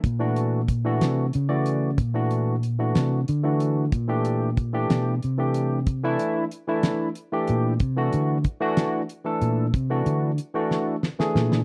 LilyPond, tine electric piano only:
\new Staff \with { instrumentName = "Tine electric piano" } { \time 6/8 \key d \dorian \tempo 4. = 62 r16 <e a d' fis'>8 r8 <e a d' fis'>8 r8 <e a fis' d''>8 r16 | r16 <e a d' fis'>8 r8 <e a d' fis'>8 r8 <e a d' fis'>8 r16 | r16 <e a d' g'>8 r8 <e a d' g'>8 r8 <e a d' g'>8 r16 | r16 <e a d' e'>8 r8 <e a d' e'>8 r8 <e a d' g'>8 r16 |
r16 <e a d' fis'>8 r8 <e a d' fis'>8 r8 <e a d' a'>8 r16 | r16 <e a d' fis'>8 r8 <e a d' fis'>8 r8 <e a d' aes'>8 r16 | }